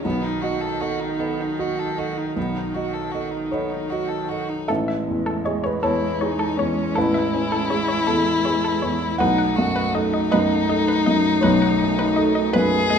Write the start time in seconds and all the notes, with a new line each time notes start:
0.04 B1 D#3 B3
0.22 D#4
0.42 F#4 D#5
0.61 A4
0.80 F#4 A4 D#5
1.00 D#4
1.19 B3 A4 D#5
1.41 D#4
1.59 F#4 D#5
1.79 A4
1.98 F#4 A4 D#5
2.18 D#4
2.36 B1 B3
2.56 D#4
2.74 F#4 D#5
2.93 A4
3.12 F#4 A4 D#5
3.31 D#4
3.51 B3 A4 C#5 D#5
3.70 D#4
3.90 F#4 D#5
4.09 A4
4.29 F#4 A4 D#5
4.49 D#4
4.68 A1 G#3 A4 E5
4.88 E5
5.08 E2
5.26 A4
5.45 G#4 C#5 D#5
5.64 B4 C#5
5.82 E2 E4 A4 C#5
6.21 D#4 G#4 C#5
6.39 A4
6.57 E2 C#4 C#5
6.95 A1 E4 A4 B4
7.14 E5
7.34 C#4
7.52 A4
7.70 G#4 C#5
7.88 C#5
8.07 E2 A4
8.45 G#4 C#5
8.64 A4
8.82 E2 C#5
9.18 B1 A3 D#4 B4 F#5
9.38 F#5
9.56 F#2 F#4
9.76 B4
9.94 D#4 A4 D#5
10.14 D#5
10.31 F#2 B4 D#5
10.69 A4 D#5
10.88 B4
11.06 F#2 D#5
11.41 B1 B4 C#5
11.62 F#5
11.81 D#4
11.99 B4
12.16 A4 D#5
12.35 D#5
12.53 F#2 G#4 B4
12.90 A3 D#5